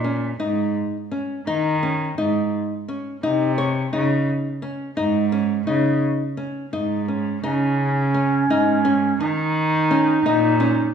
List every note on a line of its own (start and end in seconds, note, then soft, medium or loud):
0.00 0.36 A#2 medium
0.04 0.33 C#4 medium
0.40 0.74 G#2 medium
0.40 0.96 D#4 medium
1.12 1.40 C#4 medium
1.47 2.15 D#3 medium
1.47 1.75 D#4 medium
1.83 2.11 C#4 medium
2.18 2.52 G#2 medium
2.18 2.73 D#4 medium
2.88 3.16 C#4 medium
3.23 3.89 C3 medium
3.23 3.51 D#4 medium
3.58 3.86 C#5 medium
3.93 4.26 C#3 medium
3.93 4.47 D#4 medium
4.62 4.90 C#4 medium
4.97 5.64 G#2 medium
4.97 5.25 D#4 medium
5.32 5.60 C#4 medium
5.67 6.01 C#3 medium
5.67 6.23 D#4 medium
6.37 6.65 C#4 medium
6.73 7.40 G#2 medium
6.73 7.01 D#4 medium
7.08 7.36 C#4 medium
7.44 8.47 C#3 medium
7.44 9.17 C#4 medium
7.44 8.00 D#4 medium
8.14 8.43 C#4 medium
8.50 9.17 G#2 medium
8.50 8.78 D#4 medium
8.85 9.13 C#4 medium
9.20 10.22 D#3 medium
9.20 9.76 D#4 medium
9.20 10.94 D#4 medium
9.91 10.18 C#4 medium
10.26 10.92 A#2 medium
10.26 10.53 D#4 medium
10.60 10.88 C#4 medium